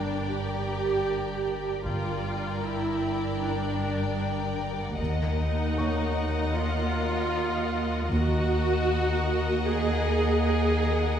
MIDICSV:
0, 0, Header, 1, 9, 480
1, 0, Start_track
1, 0, Tempo, 779221
1, 1154, Time_signature, 4, 2, 24, 8
1, 6896, End_track
2, 0, Start_track
2, 0, Title_t, "Felt piano"
2, 0, Program_c, 0, 0
2, 0, Control_c, 0, 64, 127
2, 0, Note_on_c, 0, 74, 20
2, 0, Note_on_c, 0, 86, 23
2, 882, Note_off_c, 0, 74, 0
2, 882, Note_off_c, 0, 86, 0
2, 3086, Control_c, 0, 64, 0
2, 3200, Control_c, 0, 64, 127
2, 3561, Note_on_c, 0, 73, 25
2, 3561, Note_on_c, 0, 85, 34
2, 4973, Note_off_c, 0, 73, 0
2, 4973, Note_off_c, 0, 85, 0
2, 6896, End_track
3, 0, Start_track
3, 0, Title_t, "Violin section"
3, 0, Program_c, 1, 48
3, 0, Note_on_c, 1, 79, 27
3, 1130, Note_off_c, 1, 79, 0
3, 1152, Note_on_c, 1, 79, 30
3, 3048, Note_off_c, 1, 79, 0
3, 3070, Note_on_c, 1, 78, 33
3, 4984, Note_off_c, 1, 78, 0
3, 4992, Note_on_c, 1, 78, 38
3, 6888, Note_off_c, 1, 78, 0
3, 6896, End_track
4, 0, Start_track
4, 0, Title_t, "Violin section"
4, 0, Program_c, 2, 48
4, 0, Note_on_c, 2, 70, 30
4, 0, Note_on_c, 2, 74, 29
4, 1128, Note_off_c, 2, 70, 0
4, 1130, Note_off_c, 2, 74, 0
4, 1155, Note_on_c, 2, 70, 35
4, 1156, Note_on_c, 2, 74, 33
4, 3050, Note_off_c, 2, 70, 0
4, 3050, Note_off_c, 2, 74, 0
4, 3067, Note_on_c, 2, 70, 33
4, 3068, Note_on_c, 2, 75, 36
4, 4966, Note_off_c, 2, 70, 0
4, 4966, Note_off_c, 2, 75, 0
4, 4991, Note_on_c, 2, 75, 41
4, 4993, Note_on_c, 2, 70, 44
4, 6888, Note_off_c, 2, 70, 0
4, 6888, Note_off_c, 2, 75, 0
4, 6896, End_track
5, 0, Start_track
5, 0, Title_t, "Viola section"
5, 0, Program_c, 3, 48
5, 0, Note_on_c, 3, 62, 45
5, 167, Note_off_c, 3, 62, 0
5, 187, Note_on_c, 3, 67, 47
5, 1149, Note_on_c, 3, 65, 40
5, 1150, Note_off_c, 3, 67, 0
5, 1622, Note_off_c, 3, 65, 0
5, 1635, Note_on_c, 3, 64, 42
5, 2105, Note_off_c, 3, 64, 0
5, 2118, Note_on_c, 3, 62, 41
5, 2836, Note_off_c, 3, 62, 0
5, 3313, Note_on_c, 3, 63, 43
5, 4008, Note_off_c, 3, 63, 0
5, 4027, Note_on_c, 3, 65, 60
5, 4989, Note_on_c, 3, 66, 64
5, 4990, Note_off_c, 3, 65, 0
5, 5951, Note_off_c, 3, 66, 0
5, 5953, Note_on_c, 3, 68, 63
5, 6417, Note_off_c, 3, 68, 0
5, 6424, Note_on_c, 3, 68, 66
5, 6896, Note_off_c, 3, 68, 0
5, 6896, End_track
6, 0, Start_track
6, 0, Title_t, "Cello section"
6, 0, Program_c, 4, 48
6, 0, Note_on_c, 4, 43, 29
6, 1128, Note_off_c, 4, 43, 0
6, 1152, Note_on_c, 4, 43, 36
6, 3048, Note_off_c, 4, 43, 0
6, 3072, Note_on_c, 4, 39, 36
6, 4968, Note_off_c, 4, 39, 0
6, 4993, Note_on_c, 4, 39, 44
6, 6889, Note_off_c, 4, 39, 0
6, 6896, End_track
7, 0, Start_track
7, 0, Title_t, "Double bass section"
7, 0, Program_c, 5, 48
7, 1155, Note_on_c, 5, 31, 32
7, 1610, Note_off_c, 5, 31, 0
7, 3075, Note_on_c, 5, 39, 36
7, 3529, Note_off_c, 5, 39, 0
7, 4994, Note_on_c, 5, 39, 43
7, 5449, Note_off_c, 5, 39, 0
7, 6896, End_track
8, 0, Start_track
8, 0, Title_t, "Sub bass"
8, 0, Program_c, 6, 38
8, 0, Note_on_c, 6, 31, 53
8, 1129, Note_off_c, 6, 31, 0
8, 1147, Note_on_c, 6, 31, 52
8, 3067, Note_on_c, 6, 39, 55
8, 3077, Note_off_c, 6, 31, 0
8, 4991, Note_off_c, 6, 39, 0
8, 4999, Note_on_c, 6, 39, 58
8, 6896, Note_off_c, 6, 39, 0
8, 6896, End_track
9, 0, Start_track
9, 0, Title_t, "Impact"
9, 0, Program_c, 7, 103
9, 0, Note_on_c, 7, 60, 28
9, 1153, Note_off_c, 7, 60, 0
9, 6896, End_track
0, 0, End_of_file